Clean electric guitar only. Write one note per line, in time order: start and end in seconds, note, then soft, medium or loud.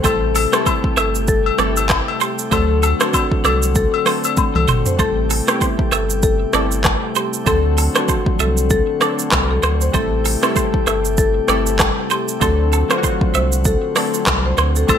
0.05 0.15 C5 medium
0.36 0.46 A4 medium
0.54 0.61 C5 medium
0.67 0.76 C5 medium
0.98 1.07 E5 medium
1.59 1.69 D5 medium
2.21 2.31 C5 medium
2.52 2.62 C5 medium
2.83 2.93 A4 medium
3.01 3.08 C5 medium
3.14 3.24 C5 medium
3.45 3.55 D5 medium
4.07 4.17 C5 medium
4.69 4.79 C5 medium
5.00 5.10 C5 medium
5.31 5.41 A4 medium
5.49 5.56 C5 medium
5.62 5.72 C5 medium
5.93 6.03 E5 medium
6.55 6.64 D5 medium
7.16 7.26 C5 medium
7.47 7.57 C5 medium
7.78 7.88 A4 medium
7.96 8.03 C5 medium
8.09 8.19 C5 medium
8.40 8.50 E5 medium
9.02 9.12 D5 medium
9.64 9.73 C5 medium
9.95 10.04 C5 loud
10.26 10.35 A4 medium
10.44 10.51 C5 medium
10.57 10.66 C5 medium
10.88 10.97 E5 medium
11.49 11.59 D5 medium
12.11 12.21 C5 medium
12.42 12.52 C5 loud
12.73 12.83 A4 medium
12.91 12.98 C5 medium
13.04 13.14 C5 medium
13.35 13.45 E5 medium
13.97 14.06 D5 medium
14.59 14.68 C5 medium
14.89 14.98 C5 medium